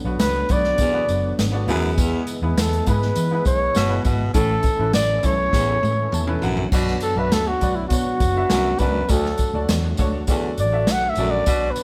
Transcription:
Already playing: D3 F#3 B3 D4
0.05 B1 B3 D4 F#4 B4
0.20 C#2 B4, snare, closed hi-hat, tambourine
0.49 B1 B3 D4 F#4 B4 D5, kick, closed hi-hat, tambourine
0.64 snare
0.78 E2 B2, kick, closed hi-hat, tambourine
0.93 B3 D4 F#4 B4
1.09 F#1, closed hi-hat, tambourine
1.39 G#1, snare, closed hi-hat, tambourine
1.52 B3 D4 F#4 D5
1.67 E2 F#2 E3 G#3 B3 E4 G#4 B4, open hi-hat, tambourine
1.98 E2, kick, closed hi-hat, tambourine
2.27 closed hi-hat, tambourine
2.42 E2 B3 E4 G#4 B4
2.57 E2 A4, snare, closed hi-hat, tambourine
2.73 closed hi-hat
2.86 G#2 B3 E4 G#4 B4, kick, closed hi-hat, tambourine
3.02 snare
3.16 E3, closed hi-hat, tambourine
3.31 B3 E4 G#4 B4
3.45 B1 C#5, kick, closed hi-hat, tambourine
3.75 G1 B2, snare, closed hi-hat, tambourine
3.89 B3 E4 G#4 B4
4.05 G#1 B2, kick, closed hi-hat, tambourine
4.34 A1 A2 A3 C#4 E4 A4 C#5, kick, closed hi-hat, tambourine
4.63 kick, closed hi-hat, tambourine
4.79 A1 C#4 E4 A4 B4
4.93 A1 D5, snare, closed hi-hat, tambourine
5.22 B1 C#4 E4 A4 C#5, kick, closed hi-hat, tambourine
5.53 A1 E2, kick, snare, tambourine
5.68 C#4 E4 A4 C#5
5.83 A2, high tom, tambourine
6.12 E2 A5, mid tom, tambourine
6.27 C#4 E4 A4 B4, mid tom
6.42 A#1 F#2 F#5, floor tom, tambourine
6.57 floor tom
6.72 B1 B2 F#3 B3 D4 F#4 B4 D5, kick, crash, tambourine
6.87 snare
7.00 A4, closed hi-hat, tambourine
7.16 B1 D4 F#4 B4 E5
7.31 D2 A4, snare, closed hi-hat, tambourine
7.48 F#4
7.61 B1 D4 F#4 B4 D5, kick, closed hi-hat, tambourine
7.76 E4
7.88 B2 D4 F#4 B4 C#5, kick, closed hi-hat, tambourine
8.20 F#1, kick, closed hi-hat, tambourine
8.36 D4 F#4 B4 E5
8.50 C2 F#2, snare, closed hi-hat, tambourine
8.79 C#2 F#2 D4 F#4 B4 D5, kick, closed hi-hat, tambourine
9.08 D2 A3 D4 F#4 A4 D5, kick, closed hi-hat, tambourine
9.25 snare
9.38 kick, closed hi-hat, tambourine
9.54 D2 D4 F#4 A4 D5
9.69 E2, snare, closed hi-hat, tambourine
9.97 D2 D4 F#4 A4 C#5, kick, closed hi-hat, tambourine
10.27 E2 D3 D4 F#4 A4 D5, kick, closed hi-hat, tambourine
10.58 A1 D5, closed hi-hat, tambourine
10.72 D4 F#4 A4 E5
10.87 B1, snare, closed hi-hat, tambourine
10.92 F#5
11.10 E5
11.15 A#1 F#2 D4 F#4 A4 D5, closed hi-hat, tambourine
11.31 D5
11.46 B1 B2 B3 D4 F#4 B4 D5, kick, closed hi-hat, tambourine
11.71 B4
11.76 closed hi-hat, tambourine

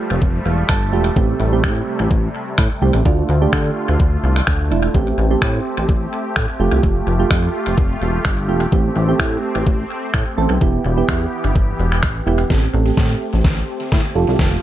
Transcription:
Already playing: F3 G3 A3 F4 G4, downlifter
0.11 F1
0.22 F1, kick
0.46 E1 F5
0.69 G1 A5, finger snap, kick
0.93 E1 A3 F4 G4
1.16 A1 C3 A3 C4 G4, kick
1.40 A1
1.52 A3 C4 G4
1.64 A2, finger snap, kick
2.00 A1
2.11 A1, kick
2.58 A2, finger snap, kick
2.82 C2 A3 C4 G4
2.94 A1
3.05 D2 D3 A3 D4 F4, kick
3.29 D2
3.41 A3 D4 G4
3.53 D3, finger snap, kick
3.89 D2
4.00 D2, kick
4.24 C2
4.36 finger snap
4.47 D2, finger snap, kick
4.71 E1 A3 D4 E4
4.94 A1 A3 C4 G4, kick
5.18 A1
5.30 A3 C4 G4
5.42 A2, finger snap, kick
5.78 A1
5.89 A1, kick
6.36 A2, finger snap, kick
6.60 F1 A3 F4 G4
6.72 C2
6.83 F1, kick
7.07 F1
7.19 A3 F4 G4
7.31 F2, finger snap, kick
7.67 F1
7.78 F1, kick
8.01 E1
8.25 G1, finger snap, kick
8.48 E1 A3 F4 G4
8.72 A1 A3 C4 G4, kick
8.96 A1
9.08 A3 C4 G4
9.19 A2, finger snap, kick
9.56 A1
9.67 A1, kick
10.14 A2, finger snap, kick
10.37 A1 A3 C4 A4
10.50 B1
10.61 E1 E3 B3 E4 G4, kick
10.85 E1
10.97 B3 E4 G4
11.09 E2, finger snap, kick
11.45 G1
11.56 G1, kick
11.79 E1
11.92 finger snap
12.03 A1, finger snap, kick
12.26 E1 B3 E4 G4
12.50 A1 A3 C4 G4 A4, kick, snare
12.73 A1 C4 G4 A4
12.97 A2, kick, snare
13.34 A1
13.44 A1, kick, snare
13.92 A2, kick, snare
14.15 F1 F4 G4 A4
14.28 C2
14.39 F1, kick, snare

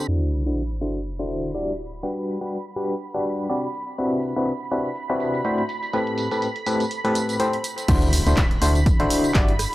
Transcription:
0.08 D3 D4 E4 F#4 B5, closed hi-hat, crash, sub drop
0.46 D3 D4 E4 F#4 C5
0.71 closed hi-hat
0.81 D3 D4 E4 F#4 C5, closed hi-hat, tambourine
0.95 tambourine
1.06 closed hi-hat
1.19 D3 D4 E4 F#4 C5, closed hi-hat
1.30 closed hi-hat, tambourine
1.44 closed hi-hat, tambourine
1.54 G3 D4 E4 F#4 D5, closed hi-hat
1.68 closed hi-hat
1.79 closed hi-hat, tambourine
1.92 closed hi-hat, tambourine
2.03 G3 D4 F#4 G4 B4, closed hi-hat, tambourine
2.17 closed hi-hat
2.28 closed hi-hat, tambourine
2.41 G3 D4 F#4 G4 B4, closed hi-hat, tambourine
2.52 closed hi-hat, tambourine
2.66 closed hi-hat
2.76 G3 D4 F#4 G4 B4, closed hi-hat, tambourine
2.90 closed hi-hat, tambourine
3.01 closed hi-hat, tambourine
3.14 G3 D4 F#4 G4 B4, closed hi-hat
3.25 closed hi-hat, tambourine
3.39 closed hi-hat, tambourine
3.49 C3 D4 F#4 G4 D5, closed hi-hat, tambourine
3.63 closed hi-hat
3.74 closed hi-hat, tambourine
3.88 closed hi-hat, tambourine
3.98 C3 C4 D4 E4 F#4 B4, closed hi-hat, tambourine
4.12 closed hi-hat
4.23 closed hi-hat, tambourine
4.36 C3 C4 D4 E4 F#4 B4, closed hi-hat, tambourine
4.47 closed hi-hat, tambourine
4.61 closed hi-hat
4.71 C3 C4 D4 E4 F#4 B4, closed hi-hat, tambourine
4.85 closed hi-hat, tambourine
4.96 closed hi-hat, tambourine
5.10 C3 C4 D4 E4 F#4 B4, closed hi-hat
5.20 closed hi-hat, tambourine
5.34 closed hi-hat, tambourine
5.45 A2 C4 D4 E4 F#4 C5, closed hi-hat, tambourine
5.58 closed hi-hat
5.69 closed hi-hat, tambourine
5.83 closed hi-hat, tambourine
5.93 A2 C4 G4 A4 B4, closed hi-hat, tambourine
6.07 closed hi-hat
6.18 closed hi-hat, tambourine
6.31 A2 C4 G4 A4 B4, closed hi-hat, tambourine
6.42 closed hi-hat, tambourine
6.56 closed hi-hat
6.66 A2 C4 G4 A4 B4, closed hi-hat, tambourine
6.80 closed hi-hat, tambourine
6.91 closed hi-hat, tambourine
7.04 A2 C4 G4 A4 B4, closed hi-hat
7.15 closed hi-hat, tambourine
7.29 closed hi-hat, tambourine
7.40 A2 C4 G4 A4 C5, closed hi-hat, tambourine
7.53 closed hi-hat
7.64 closed hi-hat, tambourine
7.78 closed hi-hat, tambourine
7.88 D2 D3 D4 E4 F#4 C5 B5, kick, closed hi-hat, crash, tambourine, impact
8.02 closed hi-hat
8.13 open hi-hat, tambourine
8.27 D2 D3 D4 E4 F#4 C5, closed hi-hat, tambourine
8.37 kick, clap, closed hi-hat, tambourine
8.51 closed hi-hat
8.62 D2 D3 D4 E4 F#4 C5, open hi-hat, tambourine
8.75 closed hi-hat, tambourine
8.86 kick, closed hi-hat, tambourine
9.00 A1 D3 D4 E4 F#4 C5, closed hi-hat
9.10 open hi-hat, tambourine
9.24 closed hi-hat, tambourine
9.34 G1 G3 D4 E4 F#4 D5, kick, clap, closed hi-hat, tambourine
9.49 closed hi-hat
9.59 cross-stick, open hi-hat, tambourine

